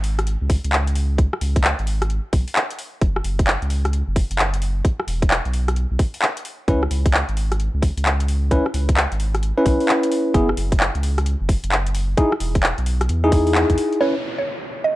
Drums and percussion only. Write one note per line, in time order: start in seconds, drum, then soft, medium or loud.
0.04 open hi-hat loud
0.19 cross-stick medium
0.19 closed hi-hat soft
0.27 closed hi-hat medium
0.50 kick loud
0.50 open hi-hat loud
0.64 closed hi-hat medium
0.73 clap loud
0.87 closed hi-hat medium
0.95 open hi-hat loud
1.18 kick loud
1.18 closed hi-hat medium
1.33 cross-stick medium
1.41 open hi-hat loud
1.56 kick loud
1.56 closed hi-hat medium
1.64 clap loud
1.79 closed hi-hat soft
1.87 open hi-hat loud
2.02 cross-stick medium
2.02 closed hi-hat soft
2.10 closed hi-hat medium
2.33 kick loud
2.33 open hi-hat loud
2.48 open hi-hat medium
2.56 clap loud
2.71 closed hi-hat medium
2.79 open hi-hat loud
3.01 kick loud
3.01 closed hi-hat medium
3.16 cross-stick medium
3.24 open hi-hat loud
3.39 kick loud
3.39 closed hi-hat medium
3.47 clap loud
3.62 closed hi-hat soft
3.70 open hi-hat medium
3.85 cross-stick medium
3.85 closed hi-hat soft
3.93 closed hi-hat medium
4.16 kick loud
4.16 open hi-hat loud
4.31 closed hi-hat medium
4.39 clap loud
4.54 closed hi-hat medium
4.62 open hi-hat loud
4.85 kick loud
4.85 closed hi-hat medium
5.00 cross-stick medium
5.08 open hi-hat medium
5.22 kick loud
5.22 closed hi-hat medium
5.31 clap loud
5.45 closed hi-hat soft
5.54 open hi-hat medium
5.68 cross-stick medium
5.68 closed hi-hat soft
5.76 closed hi-hat medium
5.99 kick loud
5.99 open hi-hat loud
6.14 open hi-hat medium
6.22 clap loud
6.37 closed hi-hat medium
6.45 open hi-hat loud
6.68 kick loud
6.68 closed hi-hat medium
6.83 cross-stick medium
6.91 open hi-hat loud
7.06 kick loud
7.06 closed hi-hat medium
7.14 clap loud
7.29 closed hi-hat soft
7.37 open hi-hat medium
7.52 cross-stick medium
7.52 closed hi-hat soft
7.60 closed hi-hat medium
7.82 kick loud
7.82 open hi-hat loud
7.97 closed hi-hat medium
8.06 clap loud
8.20 closed hi-hat medium
8.28 open hi-hat medium
8.51 kick loud
8.51 closed hi-hat medium
8.66 cross-stick medium
8.74 open hi-hat loud
8.89 kick medium
8.89 closed hi-hat medium
8.97 clap loud
9.12 closed hi-hat soft
9.20 open hi-hat loud
9.35 cross-stick medium
9.35 closed hi-hat medium
9.43 closed hi-hat medium
9.66 kick loud
9.66 open hi-hat loud
9.80 open hi-hat medium
9.89 clap loud
10.03 closed hi-hat medium
10.12 open hi-hat loud
10.34 kick loud
10.34 closed hi-hat medium
10.49 cross-stick medium
10.57 open hi-hat loud
10.72 kick loud
10.72 closed hi-hat medium
10.80 clap loud
10.95 closed hi-hat soft
11.03 open hi-hat loud
11.18 cross-stick medium
11.18 closed hi-hat medium
11.26 closed hi-hat medium
11.49 kick loud
11.49 open hi-hat loud
11.64 closed hi-hat medium
11.72 clap loud
11.87 closed hi-hat medium
11.95 open hi-hat loud
12.17 kick loud
12.17 closed hi-hat medium
12.32 cross-stick medium
12.40 open hi-hat loud
12.55 kick loud
12.55 closed hi-hat medium
12.63 clap loud
12.78 closed hi-hat soft
12.86 open hi-hat loud
13.01 cross-stick medium
13.01 closed hi-hat medium
13.09 closed hi-hat medium
13.32 kick loud
13.32 open hi-hat loud
13.47 open hi-hat medium
13.55 clap loud
13.70 kick medium
13.70 closed hi-hat medium
13.78 open hi-hat loud
13.93 closed hi-hat soft